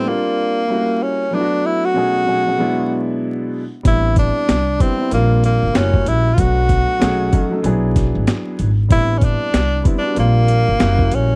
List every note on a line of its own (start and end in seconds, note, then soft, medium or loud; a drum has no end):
0.05 0.59 G3 medium
0.05 0.59 A#3 medium
0.05 1.04 A#3 medium
0.05 0.60 C4 medium
0.05 0.60 D4 medium
0.05 0.60 F4 medium
0.68 1.22 G3 medium
0.68 0.77 A3 soft
0.68 1.23 C#4 medium
0.68 1.23 E4 medium
0.68 1.23 F#4 medium
0.75 1.25 A#3 medium
1.03 1.36 C#4 medium
1.31 1.93 F#3 medium
1.31 1.94 A3 medium
1.31 1.96 B3 medium
1.31 1.96 D4 medium
1.31 1.67 D4 medium
1.31 1.41 E4 medium
1.41 2.00 F#4 medium
1.66 1.87 E4 medium
1.85 3.10 F#4 loud
1.94 2.21 B2 medium
1.94 2.22 F#3 medium
1.94 2.22 A3 medium
1.94 2.23 C#4 medium
1.94 2.23 D#4 medium
1.94 2.23 G#4 medium
2.25 2.41 B2 medium
2.25 2.41 F#3 medium
2.25 2.41 A3 medium
2.25 2.42 C#4 medium
2.25 2.42 D#4 medium
2.25 2.42 G#4 medium
2.45 2.56 B2 medium
2.45 2.57 F#3 medium
2.45 2.59 A3 medium
2.45 2.59 C#4 medium
2.45 2.60 D#4 medium
2.45 2.60 G#4 medium
2.57 3.60 B2 medium
2.57 3.61 F#3 medium
2.57 3.61 G#3 medium
2.57 3.62 B3 medium
2.57 3.62 D4 medium
2.57 3.62 E4 loud
3.83 4.29 A1 loud
3.83 4.57 G3 medium
3.83 4.58 B3 medium
3.83 4.58 C4 medium
3.83 4.58 D4 medium
3.83 4.59 E4 medium
3.83 4.16 E4 loud
3.83 kick loud
3.83 closed hi-hat medium
4.16 4.83 D4 medium
4.16 kick medium
4.16 closed hi-hat medium
4.49 4.76 C2 medium
4.49 snare loud
4.49 closed hi-hat loud
4.79 4.94 G3 medium
4.79 4.94 B3 medium
4.79 4.94 C4 medium
4.79 5.13 C4 medium
4.79 4.95 D4 medium
4.79 4.95 E4 medium
4.79 kick medium
4.79 closed hi-hat medium
4.97 5.09 G3 medium
4.97 5.11 B3 medium
4.97 5.10 C4 medium
4.97 5.11 D4 medium
4.97 5.12 E4 medium
5.10 5.56 A#1 medium
5.10 5.64 G3 medium
5.10 5.64 A#3 medium
5.10 5.42 A#3 medium
5.10 5.65 C4 medium
5.10 5.65 D4 medium
5.10 5.66 F4 medium
5.10 closed hi-hat medium
5.44 5.78 A#3 medium
5.44 closed hi-hat medium
5.63 5.73 G1 medium
5.73 6.02 F#1 medium
5.73 6.27 G3 medium
5.73 6.27 A#3 medium
5.73 6.28 C#4 medium
5.73 6.10 C#4 medium
5.73 6.28 E4 medium
5.73 6.29 F#4 medium
5.73 snare loud
5.73 closed hi-hat medium
5.94 kick medium
6.06 6.34 A#1 medium
6.06 6.36 E4 medium
6.06 closed hi-hat medium
6.34 6.82 B1 medium
6.34 6.98 F#3 medium
6.34 6.99 A3 medium
6.34 7.01 B3 medium
6.34 6.41 F4 medium
6.34 kick loud
6.34 closed hi-hat loud
6.39 7.02 D4 medium
6.39 7.02 F#4 medium
6.39 7.65 F#4 loud
6.69 kick medium
6.69 closed hi-hat medium
6.99 7.29 B1 medium
6.99 7.27 F#3 medium
6.99 7.27 A3 medium
6.99 7.28 C#4 medium
6.99 7.28 D#4 medium
6.99 7.29 G#4 medium
6.99 snare loud
6.99 closed hi-hat loud
7.31 7.46 F#3 medium
7.31 7.47 A3 medium
7.31 7.47 C#4 medium
7.31 7.48 D#4 medium
7.31 7.48 A4 medium
7.31 kick medium
7.31 closed hi-hat medium
7.50 7.61 F#3 medium
7.50 7.64 A3 medium
7.50 7.64 C#4 medium
7.50 7.65 D#4 medium
7.50 7.65 A4 medium
7.62 8.08 B1 loud
7.62 8.66 F#3 medium
7.62 8.66 B3 medium
7.62 8.67 D4 medium
7.62 8.67 E4 medium
7.62 8.67 G#4 loud
7.62 closed hi-hat medium
7.96 kick medium
7.96 snare soft
7.96 closed hi-hat medium
8.15 8.26 G#1 medium
8.27 snare loud
8.27 closed hi-hat medium
8.59 8.87 G#1 loud
8.59 closed hi-hat medium
8.89 9.34 A1 medium
8.89 9.62 G3 medium
8.89 9.63 B3 medium
8.89 9.63 C4 medium
8.89 9.64 D4 medium
8.89 9.64 E4 medium
8.89 9.20 E4 loud
8.89 kick loud
8.89 closed hi-hat loud
9.18 9.26 C#4 medium
9.18 kick medium
9.18 closed hi-hat medium
9.24 9.86 D4 loud
9.54 9.81 C2 medium
9.54 snare loud
9.54 closed hi-hat loud
9.83 9.99 G3 medium
9.83 9.99 B3 medium
9.83 10.00 C4 medium
9.83 10.00 D4 medium
9.83 10.00 E4 medium
9.83 kick loud
9.83 closed hi-hat medium
9.98 10.13 G3 medium
9.98 10.17 D4 medium
10.03 10.16 B3 medium
10.03 10.15 C4 medium
10.03 10.16 D4 medium
10.03 10.17 F#4 medium
10.15 10.61 A#1 loud
10.15 10.69 G3 medium
10.15 10.69 A#3 medium
10.15 10.70 C4 medium
10.15 10.70 D4 medium
10.15 10.71 F4 medium
10.15 closed hi-hat loud
10.19 11.16 A#3 loud
10.48 closed hi-hat medium
10.68 10.79 G1 medium
10.78 11.08 F#1 loud
10.78 11.32 G3 medium
10.78 11.33 A#3 medium
10.78 11.33 C#4 medium
10.78 11.33 E4 medium
10.78 11.34 F#4 medium
10.78 snare loud
10.78 closed hi-hat medium
10.99 kick medium
11.12 11.36 A#1 medium
11.12 11.36 C#4 medium
11.12 closed hi-hat medium